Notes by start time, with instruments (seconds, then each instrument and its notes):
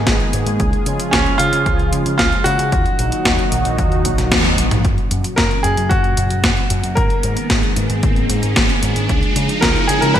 Already playing: analog synth pad D#3 G#3 A#3 B3 G#4, grand piano D#4
0.07 picked electric bass G#1, kick, snare, closed hi-hat
0.20 closed hi-hat
0.33 picked electric bass G#2, closed hi-hat
0.47 picked electric bass G#2, closed hi-hat
0.60 picked electric bass C#2, analog synth pad C#3 F3 F4, kick, closed hi-hat
0.73 closed hi-hat
0.86 picked electric bass C#3, closed hi-hat
1.00 closed hi-hat
1.11 picked electric bass C#2, grand piano C#4, kick, snare, closed hi-hat
1.26 closed hi-hat
1.38 picked electric bass C#3, grand piano F4, closed hi-hat
1.53 picked electric bass C#3, closed hi-hat
1.66 picked electric bass C#2, kick, closed hi-hat
1.79 closed hi-hat
1.93 picked electric bass C#3, closed hi-hat
2.06 picked electric bass C#3, closed hi-hat
2.18 picked electric bass C#2, grand piano F4, kick, snare, closed hi-hat
2.32 closed hi-hat
2.44 picked electric bass C#3, grand piano F#4, closed hi-hat
2.59 picked electric bass C#3, closed hi-hat
2.72 picked electric bass D#2, analog synth pad A#2 D#3 F#3 D#4 F#4, kick, closed hi-hat
2.86 closed hi-hat
2.99 picked electric bass A#1, closed hi-hat
3.12 closed hi-hat
3.25 picked electric bass D#2, kick, snare, closed hi-hat
3.39 closed hi-hat
3.52 picked electric bass A#1, closed hi-hat
3.65 picked electric bass A#1, closed hi-hat
3.78 picked electric bass D#2, kick, closed hi-hat
3.92 closed hi-hat
4.05 picked electric bass A#1, kick, closed hi-hat
4.18 picked electric bass A#1, snare, closed hi-hat
4.32 picked electric bass D#2, kick, snare, closed hi-hat, high tom
4.45 closed hi-hat, high tom
4.58 picked electric bass A#1, closed hi-hat
4.71 picked electric bass A#1, closed hi-hat, mid tom
4.85 picked electric bass F#1, analog synth pad A#2 C#3 F#3 C#4 F#4, kick, closed hi-hat, riser
4.98 closed hi-hat
5.11 picked electric bass F#2, closed hi-hat
5.24 closed hi-hat
5.36 picked electric bass F#1, grand piano A#4, kick, snare, closed hi-hat
5.51 closed hi-hat
5.63 picked electric bass F#2, grand piano G#4, closed hi-hat
5.77 picked electric bass F#2, closed hi-hat
5.89 picked electric bass F#1, grand piano F#4, kick, closed hi-hat
6.04 closed hi-hat
6.17 picked electric bass F#2, closed hi-hat
6.31 picked electric bass F#2, closed hi-hat
6.44 picked electric bass F#1, kick, snare, closed hi-hat
6.57 closed hi-hat
6.70 picked electric bass F#2, closed hi-hat
6.84 picked electric bass F#2, closed hi-hat
6.95 picked electric bass G#1, analog synth pad D#3 G#3 A#3 B3 G#4, grand piano A#4, kick, closed hi-hat
7.10 closed hi-hat
7.23 picked electric bass G#2, closed hi-hat
7.37 closed hi-hat
7.50 picked electric bass G#1, kick, snare, closed hi-hat
7.63 closed hi-hat
7.76 picked electric bass G#2, closed hi-hat
7.90 picked electric bass G#2, closed hi-hat
8.03 picked electric bass G#1, kick, closed hi-hat
8.16 closed hi-hat
8.30 picked electric bass G#2, closed hi-hat
8.43 picked electric bass G#2, closed hi-hat
8.56 picked electric bass G#1, kick, snare, closed hi-hat
8.69 closed hi-hat
8.83 picked electric bass G#2, closed hi-hat
8.96 picked electric bass G#2, closed hi-hat
9.09 picked electric bass C#2, analog synth pad C#3 F3 F4, kick, closed hi-hat
9.23 closed hi-hat
9.36 picked electric bass C#3, closed hi-hat
9.49 closed hi-hat
9.61 picked electric bass C#2, grand piano A#4, kick, snare, closed hi-hat
9.76 closed hi-hat
9.87 picked electric bass C#3, grand piano G#4, closed hi-hat
10.01 picked electric bass C#3, grand piano A#4, closed hi-hat
10.14 picked electric bass C#2, grand piano B4, kick, closed hi-hat